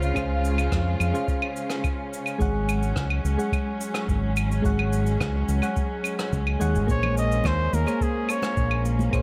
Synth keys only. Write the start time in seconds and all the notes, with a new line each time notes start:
Already playing: C#4 G#4 C5 F5
0.14 C#4 G#4 C5 F5
1.13 C#4 G#4 C5 F5
2.38 G#3 G#4 C#5 F#5
3.38 G#3 G#4 C#5 F#5
4.62 G#3 G#4 C#5 F#5
5.61 G#3 G#4 C#5 F#5
6.59 G#3 G#4 C#5 F#5
6.87 A#3 G#4 C5 C#5
7.86 A#3 G#4 C5 C#5
9.11 A#3 G#4 C5 C#5